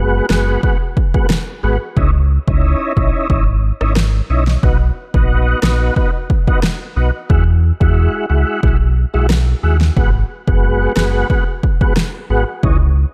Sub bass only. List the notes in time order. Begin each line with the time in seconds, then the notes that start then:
Already playing: F#1
0.30 F#1
1.63 G#1
1.97 C#2
2.48 C#2
2.97 A#1
3.30 G#1
3.81 G#1
4.30 B1
4.63 B1
5.14 A#1
5.63 A#1
6.96 B1
7.30 E2
7.81 E2
8.30 C#2
8.63 B1
9.14 B1
9.63 D#2
9.97 G#1
10.48 F#1
10.97 F#1
12.30 G#1
12.63 C#2